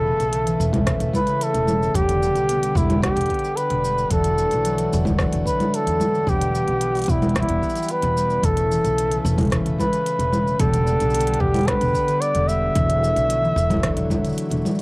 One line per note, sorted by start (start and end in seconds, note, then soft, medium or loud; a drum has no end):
0.00 0.12 E1 loud
0.00 0.73 C#3 medium
0.00 1.93 C#3 medium
0.00 1.91 E3 medium
0.00 0.33 A3 medium
0.00 1.93 A3 medium
0.00 2.09 B3 loud
0.00 1.93 E4 medium
0.00 0.87 A4 loud
0.07 0.46 E3 loud
0.20 0.53 B1 medium
0.20 closed hi-hat soft
0.20 shaker soft
0.33 1.01 A3 loud
0.33 closed hi-hat medium
0.33 shaker soft
0.47 0.78 E3 medium
0.47 closed hi-hat soft
0.47 shaker soft
0.60 0.94 E1 loud
0.60 shaker medium
0.73 1.27 C#3 medium
0.73 kick loud
0.73 closed hi-hat soft
0.73 low conga medium
0.73 shaker soft
0.87 1.32 E3 medium
0.87 kick loud
0.87 cross-stick medium
0.87 closed hi-hat medium
0.87 shaker soft
1.00 1.10 E1 medium
1.00 1.14 A3 medium
1.00 closed hi-hat soft
1.00 shaker soft
1.14 4.47 A3 loud
1.14 1.45 B4 loud
1.14 kick medium
1.14 low conga medium
1.14 shaker medium
1.27 1.54 C#3 medium
1.27 closed hi-hat soft
1.27 shaker soft
1.41 1.97 A4 loud
1.41 closed hi-hat medium
1.41 shaker soft
1.54 1.88 E1 medium
1.54 2.00 C#3 medium
1.54 closed hi-hat soft
1.54 shaker soft
1.67 2.00 E3 medium
1.67 low conga medium
1.67 shaker medium
1.83 shaker soft
1.95 2.29 E1 loud
1.95 4.09 D3 medium
1.95 2.13 G3 loud
1.95 4.09 G3 medium
1.95 4.09 B3 medium
1.95 4.09 G4 medium
1.95 2.78 G4 loud
1.95 kick loud
1.95 closed hi-hat medium
1.95 shaker soft
2.09 2.89 D3 medium
2.09 closed hi-hat soft
2.09 shaker soft
2.22 2.62 G3 loud
2.22 shaker medium
2.35 2.69 B1 medium
2.35 closed hi-hat soft
2.35 shaker soft
2.49 3.16 B3 loud
2.49 closed hi-hat medium
2.49 shaker soft
2.63 2.94 G3 medium
2.63 closed hi-hat soft
2.63 shaker soft
2.75 3.09 E1 loud
2.75 3.03 E4 medium
2.75 kick loud
2.75 shaker medium
2.90 3.43 D3 medium
2.90 closed hi-hat soft
2.90 low conga medium
2.90 shaker soft
3.02 3.48 G3 medium
3.02 3.58 G4 loud
3.02 kick loud
3.02 cross-stick medium
3.02 closed hi-hat medium
3.02 low conga medium
3.02 shaker soft
3.16 3.25 E1 medium
3.16 3.30 B3 medium
3.16 closed hi-hat soft
3.16 shaker soft
3.21 closed hi-hat soft
3.26 kick medium
3.26 closed hi-hat soft
3.30 6.41 B3 loud
3.30 closed hi-hat soft
3.34 closed hi-hat soft
3.39 closed hi-hat soft
3.44 3.69 D3 medium
3.44 shaker soft
3.56 4.11 B4 loud
3.56 closed hi-hat medium
3.56 shaker soft
3.70 4.04 E1 medium
3.70 4.16 D3 medium
3.70 closed hi-hat soft
3.70 shaker soft
3.84 4.16 G3 medium
3.84 shaker medium
3.98 shaker soft
4.10 4.45 E1 loud
4.10 4.30 E3 loud
4.10 10.56 E3 medium
4.10 6.25 A3 medium
4.10 6.25 D4 medium
4.10 6.25 F#4 medium
4.10 5.16 A4 loud
4.10 kick loud
4.10 closed hi-hat medium
4.10 shaker medium
4.24 5.05 D3 medium
4.24 closed hi-hat soft
4.24 shaker soft
4.38 4.77 E3 medium
4.38 shaker medium
4.51 4.86 B1 medium
4.51 closed hi-hat soft
4.51 shaker soft
4.65 5.11 F#3 loud
4.65 closed hi-hat medium
4.65 shaker soft
4.78 5.11 E3 medium
4.78 closed hi-hat soft
4.78 shaker soft
4.93 5.27 E1 loud
4.93 shaker medium
5.05 6.13 D3 medium
5.05 kick loud
5.05 low conga medium
5.05 shaker soft
5.19 5.45 E3 medium
5.19 kick loud
5.19 cross-stick medium
5.19 shaker soft
5.32 5.42 E1 medium
5.32 5.99 F#3 medium
5.32 closed hi-hat soft
5.32 shaker soft
5.46 5.85 E3 medium
5.46 5.76 B4 loud
5.46 kick medium
5.46 shaker medium
5.60 8.93 A3 medium
5.60 closed hi-hat soft
5.60 low conga medium
5.60 shaker soft
5.74 6.31 A4 loud
5.74 closed hi-hat medium
5.74 shaker soft
5.86 6.21 E2 medium
5.86 6.19 E3 medium
5.86 closed hi-hat soft
5.86 shaker soft
6.00 6.19 F#3 medium
6.00 low conga medium
6.00 shaker medium
6.14 6.32 D3 medium
6.14 shaker soft
6.27 6.61 E1 loud
6.27 6.54 G3 loud
6.27 8.42 G3 medium
6.27 8.42 B3 medium
6.27 8.42 G4 medium
6.27 7.11 G4 loud
6.27 kick loud
6.27 shaker soft
6.41 7.21 E3 medium
6.41 closed hi-hat medium
6.41 shaker soft
6.55 6.94 G3 medium
6.55 shaker medium
6.68 7.02 B1 medium
6.68 closed hi-hat soft
6.81 7.49 B3 loud
6.81 closed hi-hat medium
6.81 shaker soft
6.95 7.34 G3 medium
6.95 closed hi-hat soft
6.95 shaker soft
6.97 closed hi-hat soft
6.99 closed hi-hat soft
7.02 closed hi-hat soft
7.04 closed hi-hat soft
7.06 7.42 E1 loud
7.06 7.36 E4 medium
7.06 kick loud
7.06 closed hi-hat soft
7.06 shaker medium
7.22 7.75 E3 medium
7.22 closed hi-hat soft
7.22 low conga medium
7.22 shaker soft
7.29 closed hi-hat soft
7.35 8.15 G3 medium
7.35 7.93 E4 loud
7.35 kick loud
7.35 cross-stick medium
7.35 closed hi-hat medium
7.35 low conga medium
7.35 shaker soft
7.43 closed hi-hat soft
7.49 7.59 E1 medium
7.49 7.62 B3 medium
7.49 closed hi-hat soft
7.49 shaker soft
7.62 10.73 B3 loud
7.62 kick medium
7.62 shaker soft
7.70 shaker soft
7.76 8.01 E3 medium
7.76 closed hi-hat soft
7.76 shaker medium
7.83 shaker medium
7.89 8.46 B4 loud
7.89 closed hi-hat medium
7.89 shaker soft
8.03 8.37 E1 medium
8.03 8.42 E3 medium
8.03 closed hi-hat soft
8.03 shaker soft
8.17 8.48 G3 medium
8.17 shaker medium
8.30 shaker soft
8.43 8.77 E1 loud
8.43 10.58 C#3 medium
8.43 8.62 E3 loud
8.43 10.58 A3 medium
8.43 10.57 E4 medium
8.43 9.52 A4 loud
8.43 kick loud
8.43 closed hi-hat medium
8.43 shaker soft
8.57 9.38 C#3 medium
8.57 closed hi-hat soft
8.57 shaker soft
8.71 9.11 E3 loud
8.71 shaker medium
8.84 9.18 B1 medium
8.84 closed hi-hat soft
8.84 shaker soft
8.98 9.66 A3 loud
8.98 closed hi-hat medium
8.98 shaker soft
9.12 9.43 E3 medium
9.12 closed hi-hat soft
9.12 shaker soft
9.25 9.58 E1 loud
9.25 shaker medium
9.38 9.91 C#3 medium
9.38 kick loud
9.38 closed hi-hat soft
9.38 low conga medium
9.38 shaker soft
9.41 closed hi-hat soft
9.43 closed hi-hat soft
9.45 closed hi-hat soft
9.47 closed hi-hat soft
9.50 kick loud
9.50 cross-stick medium
9.50 closed hi-hat soft
9.52 9.97 E3 medium
9.52 closed hi-hat medium
9.52 shaker soft
9.66 9.75 E1 medium
9.66 9.79 A3 medium
9.66 closed hi-hat soft
9.66 shaker soft
9.78 13.12 A3 loud
9.78 10.61 B4 loud
9.78 kick medium
9.78 low conga medium
9.78 shaker medium
9.92 10.18 C#3 medium
9.92 closed hi-hat soft
9.92 shaker soft
10.06 closed hi-hat medium
10.06 shaker soft
10.19 10.53 E1 medium
10.19 10.65 C#3 medium
10.19 closed hi-hat soft
10.19 shaker soft
10.33 10.65 E3 medium
10.33 low conga medium
10.33 shaker medium
10.47 shaker soft
10.59 10.93 E1 loud
10.59 14.82 D3 medium
10.59 12.74 G3 medium
10.59 10.78 G3 loud
10.59 12.74 B3 medium
10.59 12.74 G4 medium
10.59 11.42 A4 loud
10.59 kick loud
10.59 closed hi-hat medium
10.59 shaker soft
10.73 11.53 D3 medium
10.73 closed hi-hat soft
10.73 shaker soft
10.86 11.26 G3 loud
10.86 shaker medium
11.00 11.35 B1 medium
11.00 closed hi-hat soft
11.00 shaker soft
11.10 11.81 B3 loud
11.10 shaker soft
11.15 closed hi-hat medium
11.15 shaker soft
11.19 closed hi-hat medium
11.19 shaker soft
11.21 shaker soft
11.27 11.59 G3 medium
11.27 closed hi-hat soft
11.34 closed hi-hat soft
11.40 11.74 E1 loud
11.40 11.70 G4 loud
11.40 kick loud
11.54 12.07 D3 medium
11.54 closed hi-hat soft
11.54 low conga medium
11.54 shaker soft
11.56 closed hi-hat soft
11.61 closed hi-hat soft
11.63 closed hi-hat soft
11.65 kick loud
11.65 cross-stick medium
11.65 closed hi-hat soft
11.68 12.13 G3 medium
11.68 12.23 B4 loud
11.68 closed hi-hat medium
11.68 low conga medium
11.68 shaker soft
11.81 11.91 E1 medium
11.81 11.94 B3 medium
11.81 closed hi-hat soft
11.81 shaker soft
11.84 shaker soft
11.86 shaker soft
11.88 shaker soft
11.91 shaker soft
11.93 14.82 B3 loud
11.93 kick medium
11.93 shaker soft
11.95 shaker medium
12.08 12.34 D3 medium
12.08 closed hi-hat soft
12.08 shaker soft
12.21 12.50 D5 loud
12.21 closed hi-hat medium
12.21 shaker soft
12.35 12.69 E1 medium
12.35 12.81 D3 medium
12.35 closed hi-hat soft
12.35 shaker soft
12.48 12.81 G3 medium
12.48 14.38 E5 loud
12.48 shaker medium
12.75 13.09 E1 loud
12.75 12.94 E3 loud
12.75 14.82 F#3 medium
12.75 14.82 A3 medium
12.75 14.82 E4 medium
12.75 kick loud
12.75 closed hi-hat medium
12.75 shaker soft
12.89 13.69 D3 medium
12.89 closed hi-hat soft
12.89 shaker soft
13.02 13.42 E3 loud
13.02 shaker medium
13.16 13.50 B1 medium
13.16 closed hi-hat soft
13.16 shaker soft
13.29 13.76 F#3 loud
13.29 closed hi-hat medium
13.29 shaker soft
13.43 13.76 E3 medium
13.43 shaker soft
13.56 13.90 E1 loud
13.56 shaker medium
13.70 14.24 D3 medium
13.70 kick loud
13.70 closed hi-hat soft
13.70 low conga medium
13.70 shaker soft
13.74 low conga medium
13.77 low conga soft
13.80 14.30 E3 medium
13.80 kick loud
13.80 cross-stick medium
13.80 closed hi-hat medium
13.80 low conga soft
13.80 shaker soft
13.97 14.31 E1 medium
13.97 14.10 F#3 medium
13.97 closed hi-hat soft
13.97 shaker soft
14.10 14.30 F#3 loud
14.10 kick medium
14.10 low conga medium
14.10 shaker medium
14.25 14.51 D3 medium
14.25 closed hi-hat soft
14.25 shaker soft
14.29 shaker soft
14.32 shaker soft
14.35 closed hi-hat medium
14.35 shaker soft
14.39 shaker soft
14.42 shaker soft
14.45 shaker soft
14.49 14.60 E1 medium
14.49 14.82 D3 medium
14.49 closed hi-hat soft
14.49 shaker soft
14.52 shaker soft
14.56 shaker soft
14.61 low conga medium
14.61 shaker soft
14.66 14.82 E3 medium
14.66 shaker medium
14.71 shaker soft
14.75 shaker soft